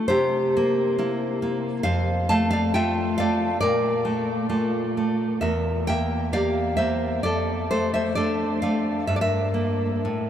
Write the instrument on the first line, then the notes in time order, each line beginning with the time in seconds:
nylon-string guitar
0.08 C3 G4 C5
0.57 A#3
0.99 A#3 E4
1.42 A#3
1.83 F2 C5 F5
2.29 A3 F5 A5
2.51 D5 F5
2.74 A3 F4 E5 G5
3.18 A3 D5 F5
3.61 A#2 A#4 D5
4.05 A3
4.49 A3 F4
4.97 A3
5.41 E2 A#4 E5
5.87 A#3 E5 G5
6.33 A#3 G4 D5 F5
6.77 A#3 C5 E5
7.23 F2 A4 D5
7.71 A3 A4 C5
7.94 C5 E5
8.15 A3 D4 A4 D5
8.62 A3 D5 F5
9.07 G2 E5
9.16 D5
9.21 A#4 E5
9.54 A#3
10.05 A2